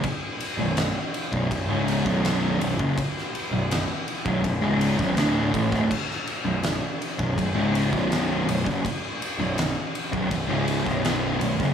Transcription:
<<
  \new Staff \with { instrumentName = "Distorted electric guitar" } { \clef bass \time 4/4 \key b \minor \tempo 4 = 82 r8. <b,, fis,>8 r8 <b,, fis,>16 <b,, fis,>16 <cis, gis, cis>8 <b,, fis, b,>8. <b,, fis,>16 <fis, cis>16 | r8. <b,, fis,>8 r8 <b,, fis,>16 <b,, fis,>16 <cis, gis, cis>8 <b,, fis,>16 <d, a, d>8 <a, e>16 <d, a,>16 | r8. <b,, fis,>8 r8 <b,, fis,>16 <b,, fis,>16 <cis, gis, cis>8 <b,, fis, b,>8. <b,, fis,>16 <fis, cis>16 | r8. <b,, fis,>8 r8 <b,, fis,>16 <b,, fis,>16 <cis, gis, cis>8 <b,, fis, b,>8. <b,, fis,>16 <fis, cis>16 | }
  \new Staff \with { instrumentName = "Picked electric bass" } { \clef bass \time 4/4 \key b \minor r8. b,,,8 r8 b,,,16 b,,,16 cis,,8 b,,,8. b,,,16 fis,,16 | r8. b,,,8 r8 b,,,16 b,,,16 cis,,8 b,,,16 d,,8 a,,16 d,,16 | r8. b,,,8 r8 b,,,16 b,,,16 cis,,8 b,,,8. b,,,16 fis,,16 | r8. b,,,8 r8 b,,,16 b,,,16 cis,,8 b,,,8. b,,,16 fis,,16 | }
  \new DrumStaff \with { instrumentName = "Drums" } \drummode { \time 4/4 <bd cymr>8 cymr8 <cymr sn>8 cymr16 bd16 <bd cymr>8 cymr16 <bd sn>16 <cymr sn>8 cymr16 bd16 | <bd cymr>16 sn16 cymr8 <cymr sn>8 cymr16 bd16 <bd cymr>8 cymr16 <bd sn>16 <cymr sn>8 <bd cymr>16 <bd sn>16 | <cymc bd>16 sn16 cymr8 <cymr sn>8 cymr16 bd16 <bd cymr>8 cymr16 <bd sn>16 <cymr sn>8 cymr16 <bd sn>16 | <bd cymr>8 cymr8 <cymr sn>8 cymr16 bd16 <bd cymr>8 cymr16 <bd sn>16 <cymr sn>8 cymr16 <bd sn>16 | }
>>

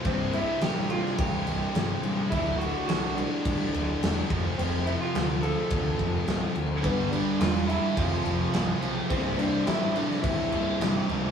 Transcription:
<<
  \new Staff \with { instrumentName = "Clean electric guitar" } { \time 4/4 \key c \major \tempo 4 = 106 c'8 e'8 g'8 f'8 g'4. r8 | e'8 fis'8 fis'8 d'2 r8 | c'8 e'16 f'8. a'2 r8 | b8 d'8 f'8 e'8 f'4. r8 |
c'8 d'8 e'8 d'8 e'4. r8 | }
  \new Staff \with { instrumentName = "Distorted electric guitar" } { \clef bass \time 4/4 \key c \major <c, g, c>1 | <d, a, d>2.~ <d, a, d>8 <f, c f>8~ | <f, c f>2.~ <f, c f>8 r8 | <g, d g>2 <f, c f>2 |
<c, g, c>1 | }
  \new Staff \with { instrumentName = "Overdriven electric guitar" } { \clef bass \time 4/4 \key c \major r1 | r1 | r1 | <g, d g>8 <g, d g>8 <g, d g>8 <g, d g>8 <f, c f>8 <f, c f>8 <f, c f>8 <f, c f>8 |
<c, g, c>8 <c, g, c>8 <c, g, c>8 <c, g, c>8 <c, g, c>8 <c, g, c>8 <c, g, c>8 <c, g, c>8 | }
  \new Staff \with { instrumentName = "Distorted electric guitar" } { \clef bass \time 4/4 \key c \major <c, g, c>8 <c, g, c>8 <c, g, c>8 <c, g, c>8 <c, g, c>8 <c, g, c>8 <c, g, c>8 <c, g, c>8 | <d, a, d>8 <d, a, d>8 <d, a, d>8 <d, a, d>8 <d, a, d>8 <d, a, d>8 <d, a, d>8 <f, c f>8 | <f, c f>8 <f, c f>8 <f, c f>8 <f, c f>8 <f, c f>8 <f, c f>8 <f, c f>8 <f, c f>8 | <g, d g>8 <g, d g>8 <g, d g>8 <g, d g>8 <f, c f>8 <f, c f>8 <f, c f>8 <f, c f>8 |
<c, g, c>8 <c, g, c>8 <c, g, c>8 <c, g, c>8 <c, g, c>8 <c, g, c>8 <c, g, c>8 <c, g, c>8 | }
  \new Staff \with { instrumentName = "Picked electric bass" } { \clef bass \time 4/4 \key c \major c,,4 a,,4 a,,8 c,,8 g,,8 a,,8 | d,,4 c,4 c,8 d,,8 e,,8 f,,8 | f,,4 d,4 d,8 f,,8 c,,8 d,8 | g,,4 e,,4 f,,8 f,,8 c,,8 b,,8 |
c,,4 a,,4 a,,8 c,,8 g,,8 des,,8 | }
  \new DrumStaff \with { instrumentName = "Drums" } \drummode { \time 4/4 <cymc bd>8 cymc8 <cymc sn>8 cymc16 sn16 <cymc bd>8 cymc8 <cymc sn>8 cymc8 | <cymc bd>8 cymc8 <cymc sn>8 cymc8 <cymc bd>8 cymc8 <cymc sn>8 <cymc bd>8 | cymc8 cymc8 <cymc sn>8 cymc8 <cymc bd>8 <cymc bd>8 <cymc sn>8 cymc8 | <cymc bd>8 cymc8 <cymc sn>8 cymc8 <cymc bd>8 cymc8 <cymc sn>8 cymc8 |
<cymc bd>8 cymc8 <cymc sn>8 cymc16 sn16 <cymc bd>8 cymc8 <cymc sn>8 cymc8 | }
>>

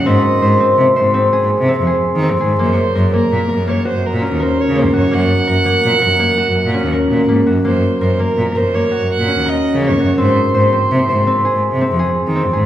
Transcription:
<<
  \new Staff \with { instrumentName = "Violin" } { \time 7/4 \key ges \lydian \tempo 4 = 166 ees''2 r1 r4 | c''4. bes'4. des''8 c''8 bes'4 c''8 des''8 c''8 des''8 | ges''1. r4 | c''4 c''8 bes'4 c''8 des''4 ges''4 ees''4 des''4 |
c''4 c''2. r2. | }
  \new Staff \with { instrumentName = "Harp" } { \time 7/4 \key ges \lydian c'4 c''8 c'4 c''8 c'8 aes'4 c'8 aes'4 c'8 aes'8 | bes4 bes'8 bes4 bes'8 bes8 ges'4 des'8 bes'4 bes8 ges'8 | bes4 bes'8 bes4 bes'8 bes8 ges'4 des'8 bes'4 bes8 ges'8 | bes4 bes'8 bes4 bes'8 bes8 ges'4 des'8 bes'4 bes8 ges'8 |
c'4 c''8 c'4 c''8 c'8 aes'4 c'8 aes'4 c'8 aes'8 | }
  \new Staff \with { instrumentName = "Cello" } { \clef bass \time 7/4 \key ges \lydian aes,8 r8 aes,8 r8 c16 r16 aes,4~ aes,16 aes,16 r16 c8 f,8 r8 ees8 f,16 aes,8 | ges,8 r8 ges,8 r8 bes,16 r16 ges,4~ ges,16 ges,16 r16 bes,8 ees,8 r8 des8 ees,16 ges,8 | ges,8 r8 ges,8 r8 bes,16 r16 ges,4~ ges,16 ges,16 r16 bes,8 ees,8 r16 bes,8 aes,8 ges,8 | ges,8 r8 ges,8 r8 bes,16 r16 ges,4~ ges,16 ges,16 r16 bes,8 ees,8 r8 des8 ees,16 ges,8 |
aes,8 r8 aes,8 r8 c16 r16 aes,4~ aes,16 aes,16 r16 c8 f,8 r8 ees8 f,16 aes,8 | }
>>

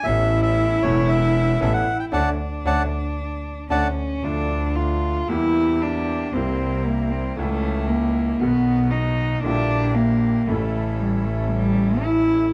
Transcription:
<<
  \new Staff \with { instrumentName = "Bandoneon" } { \time 4/4 \key d \major \tempo 4 = 115 e''8. e''8. cis''8 e''4 e''16 fis''8 g''16 | <d'' fis'' a''>8 r8 <d'' fis'' a''>8 r4. <d'' fis'' a''>8 r8 | \key a \phrygian r1 | r1 |
r1 | r1 | }
  \new Staff \with { instrumentName = "Bandoneon" } { \time 4/4 \key d \major <b cis' a'>4. <b cis' a'>4. <b cis' a'>8 r8 | <cis' d' fis'>8 r8 <cis' d' fis'>8 r4. <cis' d' fis'>8 r8 | \key a \phrygian <a d' f'>2 <bes e' g'>2 | <c' e' bes'>2 <cis' e' a'>2 |
<b dis' fis'>2 <d' e' g'>2 | <cis' e' a'>1 | }
  \new Staff \with { instrumentName = "Cello" } { \time 4/4 \key d \major e'1 | d'2. cis'4 | \key a \phrygian d'4 f'4 e'4 d'4 | c'4 bes8 c'8 a4 bes4 |
b4 dis'4 d'4 bes4 | a4 g8 a8 g4 e'4 | }
  \new Staff \with { instrumentName = "Upright piano" } { \clef bass \time 4/4 \key d \major <a,, a, e b cis' a'>4. <e,, e, e b cis' a'>4. <a,, a, e b cis' a'>8 r8 | <a cis' d'>8 r8 <a cis' d'>8 r4. <a cis' d'>8 r8 | \key a \phrygian <d, d f a d' a'>2 <e, e g bes g'>2 | <c, c g bes e'>2 <cis, cis e e' a'>2 |
<b,, b, dis fis b fis'>2 <bes,, bes, d g bes e'>2 | <a,, a, cis e a e'>1 | }
  \new Staff \with { instrumentName = "Double bass" } { \clef bass \time 4/4 \key d \major a,,4. e,,4. a,,8 r8 | d,8 r8 d,8 r4. d,8 r8 | \key a \phrygian d,2 e,2 | c,2 cis,2 |
b,,2 bes,,2 | a,,1 | }
>>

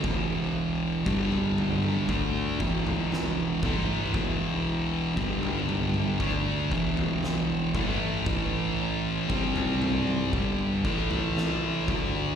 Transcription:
<<
  \new Staff \with { instrumentName = "Distorted electric guitar" } { \clef bass \time 4/4 \key e \minor \tempo 4 = 58 <e, b, e>4 <g, d g>4 <d a d'>8 <e, b, e>4 <a, e a>8 | <e, b, e>4 <g, d g>4 <d a d'>8 <e, b, e>4 <a, e a>8 | <a, e a>4 <c g c'>4 <g, d g>8 <a, e a>4 <d a d'>8 | }
  \new Staff \with { instrumentName = "Fingered electric bass" } { \clef bass \time 4/4 \key e \minor e,,4 g,,4 d,8 e,,4 a,,8 | e,,4 g,,4 d,8 e,,4 a,,8 | a,,4 c,4 g,,8 a,,4 d,8 | }
  \new DrumStaff \with { instrumentName = "Drums" } \drummode { \time 4/4 <bd tomfh>4 bd16 tomfh16 <tomfh toml>16 toml16 <bd tomfh>8 bd16 tomfh16 <sn tomfh>8 <bd tomfh toml>8 | <bd tomfh>4 bd16 tomfh16 <tomfh toml>16 toml16 <bd tomfh>8 bd16 tomfh16 <sn tomfh>8 <bd tomfh toml>8 | <bd tomfh>4 bd16 tomfh16 <tomfh toml>16 toml16 <bd tomfh>8 bd16 tomfh16 <sn tomfh>8 <bd tomfh toml>8 | }
>>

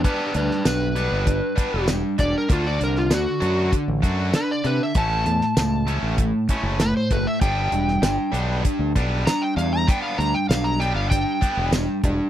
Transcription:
<<
  \new Staff \with { instrumentName = "Electric slide guitar" } { \time 4/4 \key g \major \tempo 4 = 98 <d' b'>8 <d' b'>8 b'2 r8 d''16 bes'16 | f'16 d''16 bes'16 f'16 fis'4 r4 b'16 d''16 b'16 e''16 | a''2 r4 b'16 c''16 b'16 e''16 | g''2 r4 bes''16 g''16 f''16 bes''16 |
g''16 f''16 bes''16 g''16 f''16 bes''16 g''16 f''16 g''4 r4 | }
  \new Staff \with { instrumentName = "Distorted electric guitar" } { \time 4/4 \key g \major <g b d'>8 <g d'>8 <g d'>8 <g b d'>8 <g d'>8 <g b d'>8 <g d'>8 <g d'>8 | <d d' fis'>8 <d d'>8 <d d'>8 <d d' fis'>8 <d d'>8 <d d' fis'>8 <d d'>8 <d d'>8 | <a, a cis'>8 <a, a>8 <a, a>8 <a, a cis'>8 <a, a>8 <a, a cis'>8 <a, a>8 <a, a>8 | <g b d'>8 <g d'>8 <g d'>8 <g b d'>8 <g d'>8 <g b d'>8 <g d'>8 <g d'>8 |
<g b d'>8 <g d'>8 <g d'>8 <g b d'>8 <g d'>8 <g b d'>8 <g d'>8 <g d'>8 | }
  \new Staff \with { instrumentName = "Fingered electric bass" } { \clef bass \time 4/4 \key g \major r8 d,16 r16 b,,8. g,,8 r8 e,,8 r16 e,,16 r16 | d,8 c,8 d,16 r16 fis,8 r16 a,,16 fis,8 r8 c16 r16 | a,,8 e,16 r16 cis,8. a,,8 r8 fis,,8 r16 fis,,16 r16 | g,,8 e,,8 g,,16 r16 b,,8 r16 d,16 b,,8 r8 e,8 |
r8 d,16 r16 b,,8. g,,8 r8 e,,8 r16 e,,16 r16 | }
  \new DrumStaff \with { instrumentName = "Drums" } \drummode { \time 4/4 <hh bd>8 hh16 sn16 <hh sn tamb>8 hh8 <hh bd>8 <hh bd>8 <hh sn tamb>8 <hh bd>8 | <hh bd>8 hh16 sn16 <hh sn tamb>8 hh8 <hh bd>8 <hh bd>8 <hh sn tamb>8 hh8 | <hh bd>8 hh16 sn16 <hh sn tamb>8 hh8 <hh bd>8 <hh bd>8 <hh sn tamb>8 <hh bd>8 | <hh bd>8 hh16 sn16 <hh sn tamb>8 hh8 <hh bd>8 <hh bd>8 <hh sn tamb>8 hh8 |
<hh bd>8 hh8 <hh sn tamb>8 hh8 <hh bd>8 <hh bd>8 <hh sn tamb>8 <hh bd>8 | }
>>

